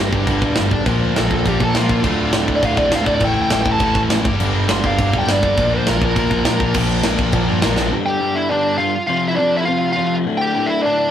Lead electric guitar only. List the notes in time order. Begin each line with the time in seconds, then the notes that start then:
1.19 A4
1.35 A4
1.49 G4
1.63 A4
1.77 F4
2.56 D5
2.66 F5
2.78 D5
2.86 D5
2.95 F5
3.06 D5
3.15 D5
3.25 G5
3.33 G5
3.42 G5
3.52 G5
3.62 G5
3.71 A5
4.72 C6
4.87 F5
5.18 G5
5.31 D5
5.74 C5
5.88 A#4
6.05 A#4
8.06 G4 G5
8.35 E4 E5
8.49 D4 D5
8.78 F4 F5
9.07 F4 F5
9.28 E4 E5
9.36 D4 D5
9.57 E4 E5
9.65 F4 F5
9.93 F4 F5
10.38 G4 G5
10.66 E4 E5
10.82 D5
10.86 D4